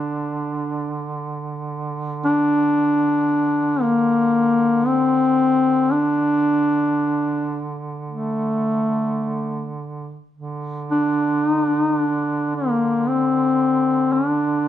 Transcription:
0.00 10.18 D3 soft
0.00 1.23 D4 medium
2.25 3.83 D4 loud
3.82 4.89 A#3 medium
4.87 5.94 C4 loud
5.93 7.79 D4 loud
8.08 9.75 A3 medium
10.35 14.68 D3 soft
10.91 11.50 D4 medium
11.50 11.62 D#4 medium
11.62 11.82 D4 medium
11.82 11.94 D#4 medium
11.94 12.52 D4 medium
12.56 13.10 A#3 medium
13.09 14.14 C4 medium
14.13 14.68 D4 medium

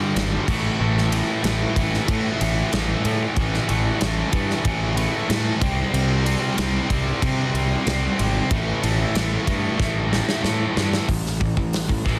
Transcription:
0.00 0.14 G2 medium
0.00 0.14 D3 medium
0.00 0.15 G3 medium
0.15 0.37 G#1 medium
0.15 0.46 G2 medium
0.15 0.46 D3 medium
0.15 0.46 G3 loud
0.15 snare loud
0.15 ride loud
0.48 0.68 A1 medium
0.48 0.80 A2 loud
0.48 0.80 E3 loud
0.48 0.80 A3 loud
0.48 kick loud
0.48 crash medium
0.80 1.21 A1 loud
0.80 1.10 A2 medium
0.80 1.11 E3 medium
0.80 1.11 A3 loud
0.98 snare soft
1.11 1.43 A2 medium
1.11 1.43 E3 medium
1.11 1.43 A3 medium
1.11 ride medium
1.43 1.65 A1 medium
1.43 1.75 A2 loud
1.43 1.76 E3 medium
1.43 1.75 A3 loud
1.43 snare loud
1.43 ride loud
1.76 1.97 A1 medium
1.76 2.06 A2 medium
1.76 2.08 E3 medium
1.76 2.07 A3 loud
1.76 kick medium
1.76 ride medium
1.94 snare soft
2.07 2.38 A2 loud
2.07 2.29 A2 medium
2.07 2.40 E3 loud
2.07 2.39 A3 loud
2.07 kick loud
2.07 ride loud
2.39 2.61 A1 medium
2.39 2.71 A2 medium
2.39 2.72 E3 medium
2.39 2.72 A3 medium
2.39 ride medium
2.72 2.93 A1 medium
2.72 3.03 A2 loud
2.72 3.05 E3 loud
2.72 3.04 A3 loud
2.72 snare loud
2.72 ride loud
3.04 3.35 A2 loud
3.04 3.25 A2 medium
3.04 3.36 E3 loud
3.04 3.36 A3 loud
3.04 ride medium
3.36 3.57 A1 loud
3.36 3.67 A2 loud
3.36 3.68 E3 loud
3.36 3.68 A3 loud
3.36 kick loud
3.36 ride loud
3.54 snare soft
3.68 3.90 A1 medium
3.68 3.99 A2 medium
3.68 4.00 E3 medium
3.68 3.99 A3 loud
3.68 ride medium
4.00 4.22 A1 loud
4.00 4.30 A2 medium
4.00 4.32 E3 medium
4.00 4.32 A3 loud
4.00 snare loud
4.00 ride loud
4.31 4.53 G2 medium
4.31 4.62 A2 medium
4.31 4.64 E3 medium
4.31 4.63 A3 medium
4.31 kick medium
4.31 ride medium
4.50 snare soft
4.63 5.06 A1 medium
4.63 4.94 A2 loud
4.63 4.96 E3 loud
4.63 4.96 A3 loud
4.63 kick loud
4.63 ride loud
4.96 5.27 A2 medium
4.96 5.29 E3 medium
4.96 5.28 A3 medium
4.96 ride medium
5.29 5.59 A2 loud
5.29 5.50 A2 medium
5.29 5.62 E3 loud
5.29 5.60 A3 loud
5.29 snare loud
5.29 ride loud
5.61 5.82 C2 loud
5.61 5.92 C3 loud
5.61 5.92 G3 loud
5.61 5.93 C4 loud
5.61 kick loud
5.61 ride medium
5.93 6.34 C2 loud
5.93 6.24 C3 loud
5.93 6.24 G3 medium
5.93 6.26 C4 loud
5.93 ride loud
6.25 6.56 C3 medium
6.25 6.57 G3 medium
6.25 6.57 C4 loud
6.25 ride medium
6.57 6.79 C2 loud
6.57 6.88 C3 loud
6.57 6.89 G3 loud
6.57 6.90 C4 loud
6.57 snare loud
6.57 ride loud
6.89 7.11 C2 medium
6.89 7.20 C3 medium
6.89 7.21 G3 medium
6.89 7.22 C4 loud
6.89 kick medium
6.89 ride medium
7.21 7.53 C3 loud
7.21 7.43 C3 medium
7.21 7.53 G3 loud
7.21 7.55 C4 loud
7.21 kick loud
7.21 ride loud
7.54 7.75 C2 medium
7.54 7.85 C3 medium
7.54 7.86 G3 medium
7.54 7.87 C4 medium
7.54 ride medium
7.86 8.07 C2 medium
7.86 8.18 C3 loud
7.86 8.18 G3 loud
7.86 8.20 C4 loud
7.86 snare loud
7.86 ride loud
8.19 8.40 G#1 medium
8.19 8.49 C3 loud
8.19 8.50 G3 loud
8.19 8.52 C4 loud
8.19 ride medium
8.51 8.71 A1 loud
8.51 8.82 A2 loud
8.51 8.83 E3 loud
8.51 8.83 A3 loud
8.51 kick loud
8.51 ride loud
8.83 9.04 A1 medium
8.83 9.14 A2 loud
8.83 9.15 E3 medium
8.83 9.15 A3 medium
8.83 ride medium
9.15 9.36 A1 loud
9.15 9.45 A2 medium
9.15 9.45 E3 medium
9.15 9.46 A3 loud
9.15 snare loud
9.15 ride loud
9.46 9.68 G2 medium
9.46 9.77 A2 medium
9.46 9.78 E3 medium
9.46 9.78 A3 loud
9.46 kick medium
9.46 ride medium
9.78 10.20 A1 medium
9.78 10.09 A2 loud
9.78 10.10 E3 loud
9.78 10.10 A3 loud
9.78 kick loud
9.78 snare medium
10.10 10.41 A2 medium
10.10 10.42 E3 medium
10.10 10.43 A3 medium
10.10 snare medium
10.29 snare medium
10.43 10.74 A2 medium
10.43 10.65 A2 medium
10.43 10.75 E3 medium
10.43 10.75 A3 loud
10.43 snare medium
10.75 10.97 G2 medium
10.75 11.07 A2 medium
10.75 11.07 E3 loud
10.75 11.07 A3 loud
10.75 snare loud
10.93 snare loud
11.08 11.39 A1 medium
11.08 11.34 A2 medium
11.08 11.35 E3 medium
11.08 kick medium
11.08 open hi-hat medium
11.26 snare soft
11.40 11.56 A1 medium
11.40 11.56 A2 medium
11.40 11.56 E3 medium
11.40 kick loud
11.57 11.87 A1 medium
11.57 11.83 A2 medium
11.57 11.83 E3 medium
11.57 kick medium
11.73 snare loud
11.73 open hi-hat medium
11.88 12.05 A1 medium
11.88 12.04 A2 medium
11.88 12.04 E3 medium
11.88 kick medium
12.05 12.19 A1 medium
12.05 12.19 A2 loud
12.05 12.19 E3 loud
12.05 kick loud
12.05 snare soft

